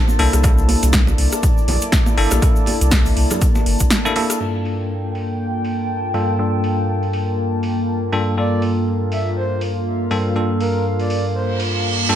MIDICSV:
0, 0, Header, 1, 7, 480
1, 0, Start_track
1, 0, Tempo, 495868
1, 426, Time_signature, 4, 2, 24, 8
1, 11765, End_track
2, 0, Start_track
2, 0, Title_t, "Ambient pad"
2, 0, Program_c, 0, 92
2, 0, Note_on_c, 0, 58, 90
2, 0, Note_on_c, 0, 62, 93
2, 0, Note_on_c, 0, 72, 89
2, 0, Note_on_c, 0, 81, 73
2, 185, Note_on_c, 0, 64, 78
2, 452, Note_on_c, 0, 74, 98
2, 1075, Note_off_c, 0, 72, 0
2, 1409, Note_off_c, 0, 62, 0
2, 4265, Note_off_c, 0, 64, 0
2, 4265, Note_off_c, 0, 81, 0
2, 4268, Note_on_c, 0, 65, 71
2, 4347, Note_on_c, 0, 79, 85
2, 4845, Note_on_c, 0, 81, 80
2, 4973, Note_off_c, 0, 74, 0
2, 8709, Note_on_c, 0, 77, 81
2, 8843, Note_off_c, 0, 79, 0
2, 9309, Note_off_c, 0, 81, 0
2, 11765, Note_off_c, 0, 58, 0
2, 11765, Note_off_c, 0, 65, 0
2, 11765, Note_off_c, 0, 77, 0
2, 11765, End_track
3, 0, Start_track
3, 0, Title_t, "Soft synth lead"
3, 0, Program_c, 1, 80
3, 8107, Note_on_c, 1, 74, 101
3, 8354, Note_off_c, 1, 74, 0
3, 8826, Note_on_c, 1, 76, 86
3, 9001, Note_off_c, 1, 76, 0
3, 9067, Note_on_c, 1, 72, 96
3, 9313, Note_off_c, 1, 72, 0
3, 10265, Note_on_c, 1, 70, 95
3, 10512, Note_off_c, 1, 70, 0
3, 10643, Note_on_c, 1, 74, 95
3, 10888, Note_off_c, 1, 74, 0
3, 10987, Note_on_c, 1, 72, 91
3, 11234, Note_off_c, 1, 72, 0
3, 11765, End_track
4, 0, Start_track
4, 0, Title_t, "Tine electric piano"
4, 0, Program_c, 2, 4
4, 0, Note_on_c, 2, 60, 72
4, 0, Note_on_c, 2, 62, 65
4, 0, Note_on_c, 2, 65, 68
4, 0, Note_on_c, 2, 69, 84
4, 160, Note_off_c, 2, 60, 0
4, 161, Note_off_c, 2, 62, 0
4, 162, Note_off_c, 2, 65, 0
4, 164, Note_off_c, 2, 69, 0
4, 185, Note_on_c, 2, 58, 91
4, 186, Note_on_c, 2, 62, 84
4, 188, Note_on_c, 2, 64, 77
4, 189, Note_on_c, 2, 69, 94
4, 401, Note_off_c, 2, 58, 0
4, 402, Note_off_c, 2, 62, 0
4, 402, Note_off_c, 2, 64, 0
4, 403, Note_off_c, 2, 69, 0
4, 423, Note_on_c, 2, 58, 75
4, 425, Note_on_c, 2, 62, 68
4, 428, Note_on_c, 2, 64, 66
4, 431, Note_on_c, 2, 69, 83
4, 2080, Note_off_c, 2, 58, 0
4, 2081, Note_off_c, 2, 62, 0
4, 2082, Note_off_c, 2, 64, 0
4, 2084, Note_off_c, 2, 69, 0
4, 2104, Note_on_c, 2, 58, 86
4, 2106, Note_on_c, 2, 62, 84
4, 2107, Note_on_c, 2, 64, 78
4, 2108, Note_on_c, 2, 69, 99
4, 2320, Note_off_c, 2, 58, 0
4, 2321, Note_off_c, 2, 62, 0
4, 2322, Note_off_c, 2, 64, 0
4, 2323, Note_off_c, 2, 69, 0
4, 2343, Note_on_c, 2, 58, 73
4, 2346, Note_on_c, 2, 62, 70
4, 2348, Note_on_c, 2, 64, 66
4, 2351, Note_on_c, 2, 69, 78
4, 3894, Note_off_c, 2, 58, 0
4, 3896, Note_off_c, 2, 62, 0
4, 3897, Note_off_c, 2, 64, 0
4, 3898, Note_off_c, 2, 69, 0
4, 3920, Note_on_c, 2, 58, 92
4, 3922, Note_on_c, 2, 62, 86
4, 3924, Note_on_c, 2, 64, 87
4, 3925, Note_on_c, 2, 69, 100
4, 4000, Note_off_c, 2, 58, 0
4, 4001, Note_off_c, 2, 62, 0
4, 4002, Note_off_c, 2, 64, 0
4, 4002, Note_off_c, 2, 69, 0
4, 4025, Note_on_c, 2, 58, 81
4, 4026, Note_on_c, 2, 62, 74
4, 4028, Note_on_c, 2, 64, 73
4, 4029, Note_on_c, 2, 69, 89
4, 4241, Note_off_c, 2, 58, 0
4, 4241, Note_off_c, 2, 62, 0
4, 4242, Note_off_c, 2, 64, 0
4, 4243, Note_off_c, 2, 69, 0
4, 4263, Note_on_c, 2, 43, 69
4, 4265, Note_on_c, 2, 58, 64
4, 4267, Note_on_c, 2, 62, 64
4, 4270, Note_on_c, 2, 65, 62
4, 4272, Note_on_c, 2, 69, 76
4, 5920, Note_off_c, 2, 43, 0
4, 5921, Note_off_c, 2, 58, 0
4, 5922, Note_off_c, 2, 62, 0
4, 5923, Note_off_c, 2, 65, 0
4, 5925, Note_off_c, 2, 69, 0
4, 5945, Note_on_c, 2, 43, 82
4, 5945, Note_on_c, 2, 58, 73
4, 5947, Note_on_c, 2, 62, 77
4, 5948, Note_on_c, 2, 65, 74
4, 5949, Note_on_c, 2, 69, 91
4, 6161, Note_off_c, 2, 43, 0
4, 6161, Note_off_c, 2, 58, 0
4, 6162, Note_off_c, 2, 62, 0
4, 6162, Note_off_c, 2, 65, 0
4, 6163, Note_off_c, 2, 69, 0
4, 6182, Note_on_c, 2, 43, 70
4, 6184, Note_on_c, 2, 58, 63
4, 6187, Note_on_c, 2, 62, 63
4, 6188, Note_on_c, 2, 65, 66
4, 6191, Note_on_c, 2, 69, 77
4, 7839, Note_off_c, 2, 43, 0
4, 7841, Note_off_c, 2, 58, 0
4, 7842, Note_off_c, 2, 62, 0
4, 7843, Note_off_c, 2, 65, 0
4, 7844, Note_off_c, 2, 69, 0
4, 7865, Note_on_c, 2, 43, 82
4, 7866, Note_on_c, 2, 58, 73
4, 7867, Note_on_c, 2, 62, 75
4, 7868, Note_on_c, 2, 65, 76
4, 7869, Note_on_c, 2, 69, 92
4, 8081, Note_off_c, 2, 43, 0
4, 8081, Note_off_c, 2, 58, 0
4, 8082, Note_off_c, 2, 62, 0
4, 8082, Note_off_c, 2, 65, 0
4, 8083, Note_off_c, 2, 69, 0
4, 8102, Note_on_c, 2, 43, 72
4, 8104, Note_on_c, 2, 58, 65
4, 8106, Note_on_c, 2, 62, 63
4, 8109, Note_on_c, 2, 65, 67
4, 8111, Note_on_c, 2, 69, 78
4, 9759, Note_off_c, 2, 43, 0
4, 9760, Note_off_c, 2, 58, 0
4, 9761, Note_off_c, 2, 62, 0
4, 9763, Note_off_c, 2, 65, 0
4, 9764, Note_off_c, 2, 69, 0
4, 9784, Note_on_c, 2, 43, 85
4, 9785, Note_on_c, 2, 58, 74
4, 9786, Note_on_c, 2, 62, 78
4, 9788, Note_on_c, 2, 65, 75
4, 9788, Note_on_c, 2, 69, 90
4, 10000, Note_off_c, 2, 43, 0
4, 10001, Note_off_c, 2, 58, 0
4, 10002, Note_off_c, 2, 62, 0
4, 10002, Note_off_c, 2, 65, 0
4, 10003, Note_off_c, 2, 69, 0
4, 10022, Note_on_c, 2, 43, 72
4, 10024, Note_on_c, 2, 58, 67
4, 10027, Note_on_c, 2, 62, 65
4, 10028, Note_on_c, 2, 65, 62
4, 10030, Note_on_c, 2, 69, 81
4, 11679, Note_off_c, 2, 43, 0
4, 11680, Note_off_c, 2, 58, 0
4, 11682, Note_off_c, 2, 62, 0
4, 11682, Note_off_c, 2, 65, 0
4, 11684, Note_off_c, 2, 69, 0
4, 11704, Note_on_c, 2, 43, 85
4, 11705, Note_on_c, 2, 58, 75
4, 11706, Note_on_c, 2, 62, 80
4, 11707, Note_on_c, 2, 65, 75
4, 11709, Note_on_c, 2, 69, 92
4, 11765, Note_off_c, 2, 43, 0
4, 11765, Note_off_c, 2, 58, 0
4, 11765, Note_off_c, 2, 62, 0
4, 11765, Note_off_c, 2, 65, 0
4, 11765, Note_off_c, 2, 69, 0
4, 11765, End_track
5, 0, Start_track
5, 0, Title_t, "Analog synth bass"
5, 0, Program_c, 3, 38
5, 187, Note_on_c, 3, 36, 92
5, 276, Note_off_c, 3, 36, 0
5, 324, Note_on_c, 3, 36, 95
5, 728, Note_off_c, 3, 36, 0
5, 803, Note_on_c, 3, 36, 98
5, 1090, Note_off_c, 3, 36, 0
5, 1146, Note_on_c, 3, 36, 86
5, 1236, Note_off_c, 3, 36, 0
5, 1626, Note_on_c, 3, 34, 97
5, 1716, Note_off_c, 3, 34, 0
5, 2106, Note_on_c, 3, 31, 85
5, 2196, Note_off_c, 3, 31, 0
5, 2243, Note_on_c, 3, 34, 105
5, 2311, Note_off_c, 3, 34, 0
5, 2723, Note_on_c, 3, 36, 98
5, 3009, Note_off_c, 3, 36, 0
5, 3065, Note_on_c, 3, 36, 90
5, 3155, Note_off_c, 3, 36, 0
5, 3546, Note_on_c, 3, 31, 84
5, 3636, Note_off_c, 3, 31, 0
5, 3683, Note_on_c, 3, 34, 101
5, 3751, Note_off_c, 3, 34, 0
5, 11765, End_track
6, 0, Start_track
6, 0, Title_t, "Reverse cymbal"
6, 0, Program_c, 4, 119
6, 10986, Note_on_c, 4, 60, 76
6, 11765, Note_off_c, 4, 60, 0
6, 11765, End_track
7, 0, Start_track
7, 0, Title_t, "Drums"
7, 74, Note_on_c, 9, 63, 91
7, 85, Note_on_c, 9, 82, 38
7, 171, Note_off_c, 9, 63, 0
7, 181, Note_off_c, 9, 82, 0
7, 182, Note_on_c, 9, 62, 53
7, 185, Note_on_c, 9, 46, 97
7, 279, Note_off_c, 9, 62, 0
7, 282, Note_off_c, 9, 46, 0
7, 322, Note_on_c, 9, 37, 86
7, 322, Note_on_c, 9, 42, 65
7, 326, Note_on_c, 9, 82, 71
7, 419, Note_off_c, 9, 37, 0
7, 419, Note_off_c, 9, 42, 0
7, 421, Note_on_c, 9, 62, 73
7, 423, Note_off_c, 9, 82, 0
7, 425, Note_on_c, 9, 37, 67
7, 425, Note_on_c, 9, 42, 55
7, 425, Note_on_c, 9, 82, 63
7, 427, Note_on_c, 9, 36, 112
7, 518, Note_off_c, 9, 62, 0
7, 521, Note_off_c, 9, 82, 0
7, 522, Note_off_c, 9, 37, 0
7, 522, Note_off_c, 9, 42, 0
7, 523, Note_off_c, 9, 36, 0
7, 561, Note_on_c, 9, 82, 40
7, 657, Note_off_c, 9, 82, 0
7, 664, Note_on_c, 9, 63, 91
7, 665, Note_on_c, 9, 46, 103
7, 761, Note_off_c, 9, 63, 0
7, 762, Note_off_c, 9, 46, 0
7, 802, Note_on_c, 9, 42, 73
7, 805, Note_on_c, 9, 62, 54
7, 805, Note_on_c, 9, 82, 73
7, 899, Note_off_c, 9, 42, 0
7, 900, Note_on_c, 9, 38, 122
7, 902, Note_off_c, 9, 62, 0
7, 902, Note_off_c, 9, 82, 0
7, 902, Note_on_c, 9, 82, 59
7, 905, Note_on_c, 9, 42, 58
7, 907, Note_on_c, 9, 36, 110
7, 997, Note_off_c, 9, 38, 0
7, 999, Note_off_c, 9, 82, 0
7, 1002, Note_off_c, 9, 42, 0
7, 1003, Note_off_c, 9, 36, 0
7, 1039, Note_on_c, 9, 62, 75
7, 1045, Note_on_c, 9, 82, 37
7, 1136, Note_off_c, 9, 62, 0
7, 1142, Note_off_c, 9, 82, 0
7, 1145, Note_on_c, 9, 46, 108
7, 1242, Note_off_c, 9, 46, 0
7, 1280, Note_on_c, 9, 82, 71
7, 1283, Note_on_c, 9, 37, 88
7, 1283, Note_on_c, 9, 42, 69
7, 1376, Note_off_c, 9, 82, 0
7, 1379, Note_off_c, 9, 37, 0
7, 1379, Note_off_c, 9, 42, 0
7, 1385, Note_on_c, 9, 42, 51
7, 1386, Note_on_c, 9, 36, 106
7, 1387, Note_on_c, 9, 82, 61
7, 1388, Note_on_c, 9, 63, 61
7, 1390, Note_on_c, 9, 62, 61
7, 1482, Note_off_c, 9, 42, 0
7, 1483, Note_off_c, 9, 36, 0
7, 1484, Note_off_c, 9, 82, 0
7, 1485, Note_off_c, 9, 63, 0
7, 1486, Note_off_c, 9, 62, 0
7, 1526, Note_on_c, 9, 82, 33
7, 1623, Note_off_c, 9, 82, 0
7, 1626, Note_on_c, 9, 46, 98
7, 1631, Note_on_c, 9, 62, 81
7, 1631, Note_on_c, 9, 64, 90
7, 1723, Note_off_c, 9, 46, 0
7, 1728, Note_off_c, 9, 62, 0
7, 1728, Note_off_c, 9, 64, 0
7, 1755, Note_on_c, 9, 82, 65
7, 1763, Note_on_c, 9, 42, 65
7, 1852, Note_off_c, 9, 82, 0
7, 1860, Note_off_c, 9, 42, 0
7, 1861, Note_on_c, 9, 38, 109
7, 1866, Note_on_c, 9, 36, 118
7, 1866, Note_on_c, 9, 42, 53
7, 1866, Note_on_c, 9, 82, 61
7, 1958, Note_off_c, 9, 38, 0
7, 1962, Note_off_c, 9, 82, 0
7, 1963, Note_off_c, 9, 36, 0
7, 1963, Note_off_c, 9, 42, 0
7, 1997, Note_on_c, 9, 62, 54
7, 2001, Note_on_c, 9, 63, 91
7, 2002, Note_on_c, 9, 82, 38
7, 2094, Note_off_c, 9, 62, 0
7, 2098, Note_off_c, 9, 63, 0
7, 2098, Note_off_c, 9, 82, 0
7, 2106, Note_on_c, 9, 46, 95
7, 2203, Note_off_c, 9, 46, 0
7, 2235, Note_on_c, 9, 82, 70
7, 2238, Note_on_c, 9, 62, 79
7, 2242, Note_on_c, 9, 37, 86
7, 2242, Note_on_c, 9, 42, 67
7, 2332, Note_off_c, 9, 82, 0
7, 2335, Note_off_c, 9, 62, 0
7, 2339, Note_off_c, 9, 37, 0
7, 2339, Note_off_c, 9, 42, 0
7, 2346, Note_on_c, 9, 36, 115
7, 2346, Note_on_c, 9, 37, 62
7, 2346, Note_on_c, 9, 42, 57
7, 2346, Note_on_c, 9, 82, 63
7, 2443, Note_off_c, 9, 36, 0
7, 2443, Note_off_c, 9, 37, 0
7, 2443, Note_off_c, 9, 42, 0
7, 2443, Note_off_c, 9, 82, 0
7, 2478, Note_on_c, 9, 82, 36
7, 2575, Note_off_c, 9, 82, 0
7, 2577, Note_on_c, 9, 62, 53
7, 2586, Note_on_c, 9, 46, 99
7, 2587, Note_on_c, 9, 63, 89
7, 2674, Note_off_c, 9, 62, 0
7, 2683, Note_off_c, 9, 46, 0
7, 2684, Note_off_c, 9, 63, 0
7, 2723, Note_on_c, 9, 42, 72
7, 2725, Note_on_c, 9, 82, 76
7, 2820, Note_off_c, 9, 42, 0
7, 2821, Note_off_c, 9, 82, 0
7, 2821, Note_on_c, 9, 38, 127
7, 2821, Note_on_c, 9, 82, 66
7, 2822, Note_on_c, 9, 62, 87
7, 2826, Note_on_c, 9, 36, 116
7, 2826, Note_on_c, 9, 42, 57
7, 2918, Note_off_c, 9, 38, 0
7, 2918, Note_off_c, 9, 82, 0
7, 2919, Note_off_c, 9, 62, 0
7, 2923, Note_off_c, 9, 36, 0
7, 2923, Note_off_c, 9, 42, 0
7, 2959, Note_on_c, 9, 82, 39
7, 2963, Note_on_c, 9, 46, 58
7, 3056, Note_off_c, 9, 82, 0
7, 3060, Note_off_c, 9, 46, 0
7, 3065, Note_on_c, 9, 46, 108
7, 3162, Note_off_c, 9, 46, 0
7, 3198, Note_on_c, 9, 62, 53
7, 3200, Note_on_c, 9, 82, 74
7, 3202, Note_on_c, 9, 37, 77
7, 3202, Note_on_c, 9, 42, 65
7, 3207, Note_on_c, 9, 64, 89
7, 3295, Note_off_c, 9, 62, 0
7, 3297, Note_off_c, 9, 82, 0
7, 3299, Note_off_c, 9, 37, 0
7, 3299, Note_off_c, 9, 42, 0
7, 3303, Note_off_c, 9, 64, 0
7, 3305, Note_on_c, 9, 42, 55
7, 3306, Note_on_c, 9, 36, 106
7, 3306, Note_on_c, 9, 82, 64
7, 3313, Note_on_c, 9, 63, 67
7, 3402, Note_off_c, 9, 42, 0
7, 3403, Note_off_c, 9, 36, 0
7, 3403, Note_off_c, 9, 82, 0
7, 3409, Note_off_c, 9, 63, 0
7, 3439, Note_on_c, 9, 82, 38
7, 3441, Note_on_c, 9, 62, 83
7, 3536, Note_off_c, 9, 82, 0
7, 3537, Note_off_c, 9, 62, 0
7, 3545, Note_on_c, 9, 46, 103
7, 3642, Note_off_c, 9, 46, 0
7, 3675, Note_on_c, 9, 82, 79
7, 3682, Note_on_c, 9, 42, 66
7, 3683, Note_on_c, 9, 36, 57
7, 3772, Note_off_c, 9, 82, 0
7, 3779, Note_off_c, 9, 42, 0
7, 3780, Note_off_c, 9, 36, 0
7, 3780, Note_on_c, 9, 38, 119
7, 3785, Note_on_c, 9, 42, 51
7, 3785, Note_on_c, 9, 62, 54
7, 3785, Note_on_c, 9, 82, 63
7, 3876, Note_off_c, 9, 38, 0
7, 3881, Note_off_c, 9, 42, 0
7, 3881, Note_off_c, 9, 82, 0
7, 3882, Note_off_c, 9, 62, 0
7, 3928, Note_on_c, 9, 82, 35
7, 3933, Note_on_c, 9, 63, 95
7, 4025, Note_off_c, 9, 82, 0
7, 4025, Note_on_c, 9, 46, 95
7, 4029, Note_off_c, 9, 63, 0
7, 4029, Note_on_c, 9, 62, 84
7, 4122, Note_off_c, 9, 46, 0
7, 4126, Note_off_c, 9, 62, 0
7, 4161, Note_on_c, 9, 37, 84
7, 4161, Note_on_c, 9, 42, 68
7, 4168, Note_on_c, 9, 82, 79
7, 4258, Note_off_c, 9, 37, 0
7, 4258, Note_off_c, 9, 42, 0
7, 4265, Note_off_c, 9, 82, 0
7, 4265, Note_on_c, 9, 49, 80
7, 4361, Note_off_c, 9, 49, 0
7, 4505, Note_on_c, 9, 46, 100
7, 4602, Note_off_c, 9, 46, 0
7, 4985, Note_on_c, 9, 46, 100
7, 5082, Note_off_c, 9, 46, 0
7, 5465, Note_on_c, 9, 46, 97
7, 5562, Note_off_c, 9, 46, 0
7, 5945, Note_on_c, 9, 46, 98
7, 6042, Note_off_c, 9, 46, 0
7, 6426, Note_on_c, 9, 46, 98
7, 6523, Note_off_c, 9, 46, 0
7, 6803, Note_on_c, 9, 46, 60
7, 6900, Note_off_c, 9, 46, 0
7, 6906, Note_on_c, 9, 46, 108
7, 7002, Note_off_c, 9, 46, 0
7, 7385, Note_on_c, 9, 46, 104
7, 7482, Note_off_c, 9, 46, 0
7, 7865, Note_on_c, 9, 46, 102
7, 7962, Note_off_c, 9, 46, 0
7, 8345, Note_on_c, 9, 46, 104
7, 8442, Note_off_c, 9, 46, 0
7, 8826, Note_on_c, 9, 46, 111
7, 8922, Note_off_c, 9, 46, 0
7, 9305, Note_on_c, 9, 46, 109
7, 9402, Note_off_c, 9, 46, 0
7, 9785, Note_on_c, 9, 46, 98
7, 9882, Note_off_c, 9, 46, 0
7, 10265, Note_on_c, 9, 46, 103
7, 10362, Note_off_c, 9, 46, 0
7, 10643, Note_on_c, 9, 46, 60
7, 10740, Note_off_c, 9, 46, 0
7, 10746, Note_on_c, 9, 46, 104
7, 10842, Note_off_c, 9, 46, 0
7, 11226, Note_on_c, 9, 46, 106
7, 11323, Note_off_c, 9, 46, 0
7, 11705, Note_on_c, 9, 46, 103
7, 11765, Note_off_c, 9, 46, 0
7, 11765, End_track
0, 0, End_of_file